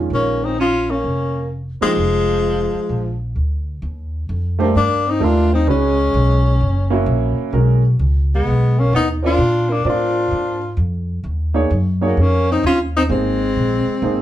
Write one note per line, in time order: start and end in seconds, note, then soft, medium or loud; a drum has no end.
0.00 0.54 D#3 soft
0.00 0.54 G#3 soft
0.00 0.54 C#4 soft
0.00 0.55 F4 soft
0.10 1.00 A#1 medium
0.10 0.45 A#3 medium
0.14 0.46 C#4 medium
0.44 0.58 C4 medium
0.44 0.59 D#4 medium
0.59 0.91 C#4 medium
0.59 0.92 F4 medium
0.90 1.51 A#3 medium
0.90 1.51 C#4 medium
1.04 1.77 F1 medium
1.81 1.95 F3 medium
1.81 3.17 F3 medium
1.81 3.17 G#3 loud
1.81 1.95 A#3 medium
1.81 1.96 D#4 medium
1.81 1.96 G4 medium
1.81 muted upright bass stroke soft
1.97 2.70 F1 medium
2.74 muted upright bass stroke soft
2.89 3.33 A#1 medium
3.36 3.79 D2 medium
3.82 4.27 D#2 medium
4.29 4.74 F2 medium
4.59 4.75 G3 medium
4.59 4.73 A3 medium
4.59 4.75 A#3 medium
4.59 4.74 D4 medium
4.59 4.74 G4 medium
4.59 4.74 C5 medium
4.75 5.20 G2 medium
4.75 5.08 A#3 medium
4.75 5.12 D4 loud
5.07 5.25 C4 medium
5.07 5.26 D#4 medium
5.20 5.66 D#2 medium
5.20 5.49 A3 medium
5.20 5.49 D4 medium
5.20 5.52 D4 medium
5.20 5.54 F4 medium
5.20 5.49 G4 medium
5.20 5.49 A#4 medium
5.53 5.67 C4 medium
5.53 5.68 D#4 medium
5.67 6.12 C#2 medium
5.67 5.96 G#3 medium
5.67 6.57 G#3 medium
5.67 5.95 C#4 medium
5.67 7.04 C#4 medium
5.67 5.96 F#4 medium
5.67 5.96 B4 medium
6.14 6.59 B1 medium
6.60 7.06 F#1 medium
6.90 7.50 A#3 medium
6.90 7.50 C#4 medium
6.90 7.50 E4 medium
6.90 7.50 F#4 medium
7.06 7.35 A#1 medium
7.37 muted upright bass stroke soft
7.53 7.98 B1 medium
7.53 7.81 G#3 medium
7.53 7.81 C#4 medium
7.53 7.81 F#4 medium
7.53 7.81 A#4 medium
7.99 8.45 C#2 medium
8.34 8.80 G#3 medium
8.34 8.81 B3 medium
8.47 8.91 B1 medium
8.79 8.93 A#3 medium
8.79 8.94 C#4 medium
8.93 9.38 D#2 medium
8.93 9.08 B3 medium
8.93 9.09 D#4 medium
9.23 9.37 C4 medium
9.23 9.71 D4 medium
9.23 9.37 F4 medium
9.23 9.74 F4 loud
9.23 9.37 A#4 medium
9.23 9.38 D5 medium
9.38 9.84 A#2 medium
9.69 9.84 A#3 medium
9.69 9.87 D4 medium
9.85 10.30 A2 medium
9.85 10.56 C4 medium
9.85 10.74 D4 medium
9.85 10.56 F4 medium
9.85 10.57 A#4 medium
9.85 10.57 D5 medium
9.89 10.76 F4 medium
10.31 10.76 G#2 medium
10.77 11.23 F2 medium
11.24 11.69 D#2 medium
11.54 11.69 A#3 medium
11.54 11.69 D#4 medium
11.54 11.69 G#4 medium
11.54 11.70 C#5 medium
11.70 12.16 F#2 medium
12.01 12.21 F#3 medium
12.01 12.16 A#3 medium
12.01 12.16 D#4 medium
12.01 12.16 G#4 medium
12.01 12.16 C#5 medium
12.06 12.22 A#3 medium
12.17 12.62 F2 medium
12.17 12.50 A#3 medium
12.17 12.50 C#4 medium
12.50 12.64 C4 medium
12.50 12.65 D#4 loud
12.63 13.09 D#2 medium
12.63 12.79 C#4 medium
12.63 12.80 F4 loud
12.96 13.04 C4 medium
12.96 13.03 D#4 medium
13.09 13.55 G#1 medium
13.09 14.22 G#3 medium
13.09 13.38 A#3 medium
13.09 14.22 C4 medium
13.09 13.38 D#4 soft
13.09 13.38 G#4 soft
13.09 13.38 C5 medium
13.56 13.85 A#1 medium
13.86 muted upright bass stroke soft
14.02 14.22 G#1 medium
14.02 14.22 A#3 medium
14.02 14.22 D#4 medium
14.02 14.22 G#4 medium
14.02 14.22 C5 medium